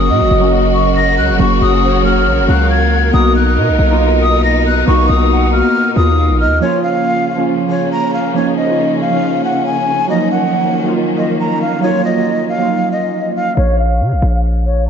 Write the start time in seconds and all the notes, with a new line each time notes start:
Already playing: F#1 C#3 F#3 A#3 C#4 F#4 A#4 D#6
0.09 A#2 D#5
0.21 F#1
0.31 F#1
0.39 F#3 A#3 C#4
0.44 F#4
0.74 C#6
0.96 A#6
1.18 C#2 F#6
1.29 F#1
1.38 F#1 F#3 A#3 C#4 C#6
1.42 F#4
1.61 F#1 D#6
1.71 F#3 A#3 C#4
1.75 F#4
1.83 C#5
2.02 F#3 A#3 C#4 F6
2.07 F#4
2.27 A#1
2.38 F#1
2.47 C#2 F#3 A#3 C#4 F5 F#6
2.51 F#4
2.70 G#6
3.11 B1 B2 A#3 B3 D#4 D#6
3.16 F#4
3.36 F#6
3.57 B2 D#5
3.69 B1
3.79 B1
3.88 A#3 B3 D#4
3.92 F4
4.22 D#6
4.44 A#6
4.66 F#6
4.85 B1 A#3 B3 D#4 C#6
4.90 F#4
5.09 B1 D#6
5.18 A#3 B3 D#4
5.22 F#4
5.31 F#5
5.51 A#3 B3 D#4 F6
5.55 F#4
5.94 D#2 A#3 B3 D#4 D#6
5.99 F4
6.18 F5
6.29 A#1
6.40 D#5 F6
6.45 D#2
6.60 C#3 F3 A#3 C#4 C#5
6.64 F4
6.83 F5
7.35 F3 A#3 C#4
7.40 F4
7.67 F3 A#3 C#4 C#5
7.71 F4
7.92 A#5
8.13 F5
8.34 F3 A#3 C#4 C#5
8.38 D#4
8.57 D#5
8.66 F3 A#3 C#4
8.70 F4
9.01 F5
9.10 F3 A#3 C#4
9.14 F4
9.44 F#5
9.66 G#5
10.07 D#3 F#3 A#3 D#4 D#5
10.11 F3
10.31 F#5
10.84 F#3 A#3 D#4
10.88 F4
11.16 F#3 A#3 D#4 D#5
11.20 F4
11.40 A#5
11.61 F5
11.80 F#3 A#3 D#4 C#5
11.85 F4
12.04 D#5
12.15 F#3 A#3 D#4
12.20 F4
12.49 F5
12.58 F#3 A#3 D#4
12.62 F4
12.92 D#5
13.35 F5
13.57 A#1 C#5
13.79 F5
14.00 C#3
14.12 A#1
14.22 A#1
14.66 C#5